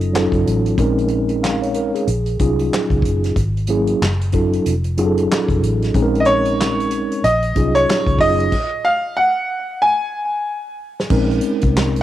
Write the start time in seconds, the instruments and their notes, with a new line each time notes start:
Already playing: fingered electric bass F#1, grand piano D#5
0.01 closed hi-hat
0.13 tine electric piano F#3 C#4 D#4 F4 A4, snare, clap
0.32 fingered electric bass F#1, kick, closed hi-hat
0.46 fingered electric bass A1, closed hi-hat
0.66 closed hi-hat
0.77 fingered electric bass A#1, tine electric piano G#3 C4 C#4 D#4 A#4, kick, closed hi-hat
0.99 closed hi-hat
1.08 closed hi-hat
1.29 closed hi-hat
1.43 tine electric piano F5, snare, clap
1.62 tine electric piano C#5, closed hi-hat
1.74 tine electric piano A#4, closed hi-hat
1.94 tine electric piano G#4, closed hi-hat
2.07 fingered electric bass A#1, closed hi-hat
2.26 closed hi-hat
2.39 fingered electric bass C2, tine electric piano F#3 C#4 D#4 F4 G#4, kick, closed hi-hat
2.59 closed hi-hat
2.74 snare, clap
2.90 fingered electric bass C#2, kick, closed hi-hat
3.02 fingered electric bass F#1, kick, closed hi-hat
3.24 snare, closed hi-hat
3.36 fingered electric bass G#1, kick, closed hi-hat
3.57 closed hi-hat
3.67 tine electric piano F#3 A#3 C#4 E4 G#4, closed hi-hat
3.87 closed hi-hat
4.01 fingered electric bass F#1, snare, clap
4.21 closed hi-hat
4.32 tine electric piano F#3 C#4 D#4 F4 A4, kick, closed hi-hat
4.53 closed hi-hat
4.66 fingered electric bass F1, closed hi-hat
4.84 closed hi-hat
4.97 fingered electric bass F#1, tine electric piano F#3 C#4 D#4 F4 G#4, closed hi-hat
5.05 tine electric piano A4
5.18 closed hi-hat
5.32 snare, clap
5.48 fingered electric bass F1, kick, closed hi-hat
5.63 fingered electric bass A1, closed hi-hat
5.82 snare, closed hi-hat
5.94 fingered electric bass A#1, tine electric piano G#3 C4 C#4 D#4 G#4, kick, closed hi-hat
6.02 tine electric piano A#4
6.15 closed hi-hat
6.20 grand piano D#5
6.25 grand piano C#5, closed hi-hat
6.45 closed hi-hat
6.61 snare, clap
6.80 closed hi-hat
6.91 closed hi-hat
7.12 closed hi-hat
7.24 fingered electric bass A#1, grand piano D#5, closed hi-hat
7.43 closed hi-hat
7.55 fingered electric bass C2, tine electric piano F#3 C#4 D#4 F4 G#4, kick, closed hi-hat
7.75 grand piano C#5, closed hi-hat
7.90 snare, clap
8.06 fingered electric bass C#2, kick, closed hi-hat
8.19 fingered electric bass F#1, tine electric piano F#3 C#4 D#4 F4 G#4, grand piano D#5, kick, open hi-hat
8.40 closed hi-hat
8.52 kick, crash
8.85 grand piano F5
9.17 grand piano F#5
9.82 grand piano G#5
11.00 snare
11.10 fingered electric bass A#1, tine electric piano G#3 C4 C#4 D#4 A#4, kick, crash
11.31 closed hi-hat
11.41 closed hi-hat
11.62 fingered electric bass C2, kick, closed hi-hat
11.77 snare, clap
11.96 closed hi-hat